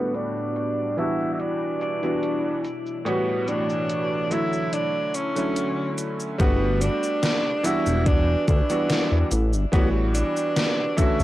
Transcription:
0.00 0.97 A2 medium
0.00 0.93 G3 medium
0.00 2.62 G3 medium
0.00 0.93 A3 medium
0.00 0.17 B3 medium
0.00 0.93 B3 medium
0.00 0.97 B3 medium
0.00 0.94 D4 medium
0.00 0.94 F#4 loud
0.00 0.97 F#4 medium
0.14 0.98 D4 loud
0.14 closed hi-hat medium
0.14 cabasa medium
0.36 cabasa soft
0.56 closed hi-hat medium
0.56 cabasa soft
0.97 4.69 B2 medium
0.97 1.97 E3 medium
0.97 1.98 G3 medium
0.97 1.98 B3 medium
0.97 2.63 D4 medium
0.97 1.98 D4 medium
0.97 2.63 E4 medium
0.97 1.31 E4 loud
0.97 1.99 F#4 loud
0.97 closed hi-hat medium
0.97 cabasa medium
1.20 cabasa soft
1.33 1.41 E4 medium
1.40 1.81 D4 loud
1.40 closed hi-hat medium
1.40 cabasa soft
1.81 2.61 D4 medium
1.81 closed hi-hat medium
1.81 cabasa medium
2.03 2.62 E3 medium
2.03 2.62 G3 medium
2.03 2.62 B3 medium
2.03 2.63 D4 medium
2.03 2.63 F#4 medium
2.03 closed hi-hat soft
2.03 cabasa soft
2.23 closed hi-hat medium
2.23 cabasa soft
2.64 4.71 E3 medium
2.64 4.71 A3 medium
2.64 4.71 F#4 medium
2.64 6.36 C#5 medium
2.64 closed hi-hat medium
2.64 cabasa medium
2.86 cabasa soft
3.05 4.26 A2 medium
3.05 4.26 E3 medium
3.05 4.27 G3 medium
3.05 3.50 B3 medium
3.05 4.27 B3 medium
3.05 4.28 F#4 loud
3.05 4.27 C#5 medium
3.05 closed hi-hat medium
3.05 cabasa soft
3.48 4.33 D4 loud
3.48 closed hi-hat medium
3.48 cabasa medium
3.70 cabasa soft
3.90 closed hi-hat medium
3.90 cabasa soft
4.30 5.31 D3 medium
4.30 5.31 F#3 medium
4.30 5.31 A3 medium
4.30 4.75 E4 loud
4.30 5.32 E4 loud
4.30 5.32 C#5 medium
4.30 closed hi-hat medium
4.30 cabasa medium
4.53 cabasa soft
4.73 6.38 D3 medium
4.73 6.38 F#3 medium
4.73 5.16 D4 loud
4.73 6.38 E4 medium
4.73 closed hi-hat medium
4.73 cabasa soft
5.14 5.98 C#4 medium
5.14 closed hi-hat medium
5.14 cabasa medium
5.35 6.34 D3 medium
5.35 6.35 F#3 medium
5.35 6.35 A3 medium
5.35 6.35 C#4 medium
5.35 6.36 E4 medium
5.35 closed hi-hat soft
5.35 cabasa soft
5.56 closed hi-hat medium
5.56 cabasa soft
5.98 closed hi-hat medium
5.98 cabasa medium
6.20 cabasa soft
6.38 6.90 G1 loud
6.38 7.59 G3 medium
6.38 7.60 A3 medium
6.38 7.60 B3 medium
6.38 6.83 B3 loud
6.38 7.60 D4 medium
6.38 7.61 F#4 loud
6.38 kick loud
6.38 closed hi-hat medium
6.38 cabasa soft
6.81 7.67 D4 loud
6.81 closed hi-hat medium
6.81 cabasa medium
7.03 cabasa soft
7.23 snare loud
7.23 closed hi-hat medium
7.23 cabasa soft
7.63 8.64 E3 medium
7.63 8.64 G3 medium
7.63 8.65 B3 medium
7.63 8.65 D4 medium
7.63 8.08 E4 loud
7.63 8.65 F#4 loud
7.63 closed hi-hat medium
7.63 cabasa medium
7.86 8.36 E1 medium
7.86 cabasa soft
8.06 8.48 D4 loud
8.06 kick loud
8.06 closed hi-hat medium
8.06 cabasa soft
8.48 8.61 D2 loud
8.48 9.27 D4 medium
8.48 kick loud
8.48 closed hi-hat medium
8.48 cabasa medium
8.69 9.29 E3 medium
8.69 9.29 G3 medium
8.69 9.29 B3 medium
8.69 9.29 D4 medium
8.69 9.30 F#4 medium
8.69 closed hi-hat soft
8.69 cabasa soft
8.90 snare loud
8.90 closed hi-hat medium
8.90 cabasa soft
9.12 9.24 E2 medium
9.31 9.55 A1 loud
9.31 closed hi-hat medium
9.31 cabasa medium
9.53 9.65 G1 loud
9.53 cabasa soft
9.72 10.23 A1 loud
9.72 10.93 E3 medium
9.72 10.93 G3 medium
9.72 9.89 B3 medium
9.72 10.93 B3 medium
9.72 10.94 F#4 loud
9.72 10.94 C#5 medium
9.72 kick loud
9.72 closed hi-hat medium
9.72 cabasa soft
10.14 10.99 D4 medium
10.14 closed hi-hat medium
10.14 cabasa medium
10.37 cabasa soft
10.56 snare loud
10.56 closed hi-hat medium
10.56 cabasa soft
10.97 11.23 D3 medium
10.97 11.23 E3 loud
10.97 11.23 A3 medium
10.97 11.23 C#4 medium
10.97 11.23 E4 loud
10.97 11.23 F#4 loud
10.97 kick medium
10.97 closed hi-hat medium
10.97 cabasa medium
11.20 11.23 D2 medium
11.20 cabasa soft

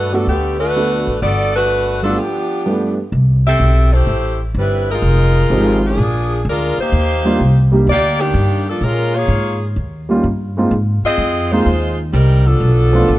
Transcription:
0.00 0.23 G2 medium
0.00 0.11 A3 medium
0.00 0.11 D4 medium
0.00 0.11 F#4 medium
0.00 0.11 B4 medium
0.12 0.28 F#3 medium
0.12 0.26 A3 medium
0.12 0.26 B3 medium
0.12 0.27 B3 medium
0.12 0.26 D4 medium
0.12 0.28 D4 medium
0.12 0.27 F#4 medium
0.12 0.29 A4 medium
0.27 1.03 D2 medium
0.27 0.58 D3 medium
0.27 0.58 A3 medium
0.27 0.58 B3 medium
0.27 0.58 G4 medium
0.59 1.19 A3 medium
0.59 1.18 D4 medium
0.59 1.19 F#4 medium
0.59 1.18 B4 loud
0.75 1.05 A3 medium
0.75 1.05 B3 medium
0.75 1.05 D4 medium
0.75 1.05 F#4 medium
1.07 1.21 A1 medium
1.22 2.14 G1 medium
1.22 1.55 B3 medium
1.22 1.54 F#4 loud
1.22 1.56 A4 medium
1.22 1.55 D5 loud
1.55 2.00 A3 medium
1.55 1.99 D4 medium
1.55 2.00 F#4 medium
1.55 2.00 B4 loud
2.02 2.16 G2 medium
2.02 2.17 F#3 medium
2.02 2.17 A3 medium
2.02 2.17 B3 medium
2.02 2.17 D4 medium
2.02 2.17 F4 medium
2.02 2.17 A4 medium
2.18 2.98 F3 medium
2.18 2.98 B3 medium
2.18 2.98 D4 medium
2.18 2.98 G4 medium
2.66 2.95 G2 medium
2.66 2.95 A3 medium
2.66 2.95 B3 medium
2.66 2.95 D4 medium
2.66 2.96 G4 medium
3.12 3.59 C2 medium
3.46 3.90 C4 medium
3.46 3.90 G4 medium
3.46 3.90 A4 loud
3.46 3.90 E5 loud
3.60 4.06 B1 medium
3.93 4.41 A3 medium
3.93 4.41 E4 medium
3.93 4.41 G4 medium
3.93 4.40 C5 medium
4.07 4.54 A1 medium
4.54 5.01 G1 medium
4.54 4.87 G3 medium
4.54 4.87 C4 medium
4.54 4.87 E4 medium
4.54 4.87 B4 medium
4.91 5.81 G#3 medium
4.91 5.80 D#4 medium
4.91 5.81 F4 medium
4.91 5.81 A#4 medium
5.02 5.49 F1 medium
5.50 5.96 G#1 medium
5.50 5.80 F3 medium
5.50 5.80 G#3 medium
5.50 5.80 C4 medium
5.50 5.80 D#4 medium
5.50 5.81 G4 medium
5.86 6.43 F3 medium
5.86 6.43 A#3 medium
5.86 6.43 D4 medium
5.86 6.43 G#4 medium
5.97 6.44 A#1 medium
6.45 6.75 D2 medium
6.45 6.80 F4 medium
6.49 6.80 G#3 medium
6.49 6.80 D4 medium
6.49 6.80 A#4 medium
6.78 7.70 A#3 medium
6.78 7.70 D#4 medium
6.78 7.70 G4 medium
6.78 7.70 C5 loud
6.78 muted upright bass stroke soft
6.92 7.39 D#2 medium
7.25 7.38 G3 medium
7.25 7.39 A#3 medium
7.25 7.39 D4 medium
7.25 7.39 D#4 medium
7.25 7.39 F4 medium
7.40 7.86 C2 medium
7.72 7.86 G3 medium
7.72 7.86 A#3 medium
7.72 7.86 D4 medium
7.72 7.86 D#4 medium
7.72 7.87 G4 medium
7.87 8.33 D2 medium
7.87 8.19 A#3 loud
7.87 8.19 G4 loud
7.87 8.19 D5 loud
7.91 8.20 D#4 loud
8.20 8.68 D#3 medium
8.20 8.68 A#3 medium
8.20 8.68 D4 medium
8.20 8.68 G4 loud
8.34 8.80 G2 medium
8.69 8.83 F3 medium
8.69 8.82 A#3 medium
8.69 8.82 D4 medium
8.69 8.83 A4 medium
8.81 9.28 A#2 medium
8.81 9.15 G#3 medium
8.81 9.15 C#4 medium
8.81 9.14 F4 medium
8.81 9.15 A#4 medium
9.15 9.63 A#3 medium
9.15 9.63 F4 medium
9.15 9.63 G#4 medium
9.15 9.63 C#5 loud
9.28 9.75 G#2 medium
9.76 10.23 D#2 medium
10.09 10.23 G3 medium
10.09 10.23 A#3 medium
10.09 10.23 C#4 medium
10.09 10.24 D#4 medium
10.09 10.24 F4 medium
10.24 10.70 G2 medium
10.57 10.71 G#3 medium
10.57 10.71 A#3 medium
10.57 10.71 C4 medium
10.57 10.71 D#4 medium
10.57 10.71 F4 medium
10.71 11.02 G#2 medium
11.03 11.49 C4 medium
11.03 11.49 F4 medium
11.03 11.49 G#4 medium
11.03 11.49 D#5 loud
11.03 muted upright bass stroke soft
11.18 11.65 F2 medium
11.52 11.65 G#3 medium
11.52 12.00 G#3 medium
11.52 11.66 A#3 medium
11.52 11.66 C4 medium
11.52 12.00 D#4 medium
11.52 11.66 D#4 medium
11.52 11.99 F4 medium
11.52 11.66 F4 medium
11.52 12.00 C5 medium
11.66 12.12 D#2 medium
12.13 12.60 C2 medium
12.13 12.44 G3 medium
12.13 12.44 C4 medium
12.13 12.44 D#4 medium
12.13 12.44 A#4 medium
12.46 13.19 F3 medium
12.46 13.19 B3 medium
12.46 13.19 D4 medium
12.46 13.19 A4 loud
12.60 13.07 B1 medium
12.93 13.07 F3 medium
12.93 13.08 A3 medium
12.93 13.08 B3 medium
12.93 13.08 D4 medium
12.93 13.08 F4 medium
13.08 13.19 A1 medium

